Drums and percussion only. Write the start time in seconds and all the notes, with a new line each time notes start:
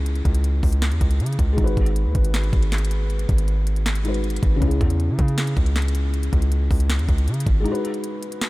0.06 closed hi-hat
0.16 closed hi-hat
0.25 kick, closed hi-hat
0.35 closed hi-hat
0.44 closed hi-hat
0.63 kick, open hi-hat
0.73 closed hi-hat
0.82 snare, clap, closed hi-hat
0.92 closed hi-hat
1.01 kick, closed hi-hat
1.11 closed hi-hat
1.20 closed hi-hat
1.26 closed hi-hat
1.33 closed hi-hat
1.39 kick, closed hi-hat
1.58 kick, closed hi-hat
1.67 closed hi-hat
1.77 kick, closed hi-hat
1.86 closed hi-hat
1.96 closed hi-hat
2.15 kick, closed hi-hat
2.25 closed hi-hat
2.34 snare, clap, closed hi-hat
2.44 closed hi-hat
2.53 kick, closed hi-hat
2.63 closed hi-hat
2.72 snare, clap, closed hi-hat
2.78 closed hi-hat
2.85 closed hi-hat
2.91 closed hi-hat
3.10 closed hi-hat
3.19 closed hi-hat
3.29 kick, closed hi-hat
3.38 closed hi-hat
3.48 closed hi-hat
3.67 closed hi-hat
3.76 closed hi-hat
3.86 snare, clap, closed hi-hat
3.95 closed hi-hat
4.05 closed hi-hat
4.14 closed hi-hat
4.24 closed hi-hat
4.30 closed hi-hat
4.36 closed hi-hat
4.43 kick, closed hi-hat
4.62 kick, closed hi-hat
4.71 closed hi-hat
4.81 kick, closed hi-hat
4.90 closed hi-hat
5.00 closed hi-hat
5.19 kick, closed hi-hat
5.28 closed hi-hat
5.38 snare, clap, closed hi-hat
5.47 closed hi-hat
5.57 kick, closed hi-hat
5.66 closed hi-hat
5.76 snare, clap, closed hi-hat
5.82 closed hi-hat
5.88 closed hi-hat
5.95 closed hi-hat
6.14 closed hi-hat
6.23 closed hi-hat
6.33 kick, closed hi-hat
6.42 closed hi-hat
6.52 closed hi-hat
6.71 kick, open hi-hat
6.80 closed hi-hat
6.90 snare, clap, closed hi-hat
6.99 closed hi-hat
7.09 kick, closed hi-hat
7.18 closed hi-hat
7.28 closed hi-hat
7.34 closed hi-hat
7.40 closed hi-hat
7.46 kick, closed hi-hat
7.66 closed hi-hat
7.75 closed hi-hat
7.85 closed hi-hat
7.94 closed hi-hat
8.04 closed hi-hat
8.23 closed hi-hat
8.32 closed hi-hat
8.41 snare, clap, closed hi-hat